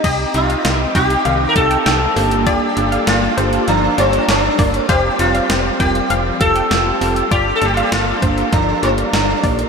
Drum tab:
CC |x---------------|----------------|----------------|----------------|
HH |x-xxx-xxx-xxx-ox|x-xxx-xxx-xxx-ox|x-xxx-xxx-xxx-ox|x-xxx-xxx-xxx-ox|
SD |----o-------o---|----o-------o---|----o-------o---|----o-------o---|
BD |o-----o---o-----|o-------------o-|o-----o---o-----|o-----o-o-----o-|